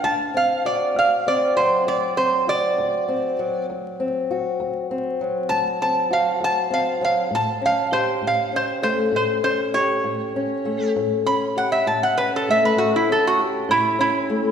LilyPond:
<<
  \new Staff \with { instrumentName = "Resonator guitar played with a steel bar" } { \time 12/8 \key d \mixolydian \tempo 4. = 66 a''8 f''8 d''8 f''8 d''8 c''8 d''8 c''8 d''2 | r2. a''8 a''8 f''8 a''8 f''8 f''8 | a''8 f''8 c''8 f''8 c''8 c''8 c''8 c''8 cis''2 | r8 b''8 fis''16 e''16 a''16 fis''16 b'16 a'16 e''16 b'16 fis'16 e'16 a'16 fis'16 r8 e'8 e'4 | }
  \new Staff \with { instrumentName = "Steel-string acoustic guitar" } { \time 12/8 \key d \mixolydian << { r8 c'8 fis'4 c'8 fis4 c'8 fis'4 c'8 fis8~ | fis8 c'8 fis'4 c'8 fis4 c'8 fis'4 c'8 fis8 | r8 cis'8 g'4 cis'8 a4 cis'8 g'4 cis'8 a8 | r8 cis'8 g'4 cis'8 a4 cis'8 g'4 cis'8 a8 | } \\ { d,4 r8 d,4 r8 d,4 r8 d,4 r8 | d,4 r8 d,4 r8 d,4 r8 d,4 r8 | a,4 r8 a,4 r8 a,4 r8 a,4 r8 | a,4 r8 a,4 r8 a,4 r8 a,4 r8 | } >> }
>>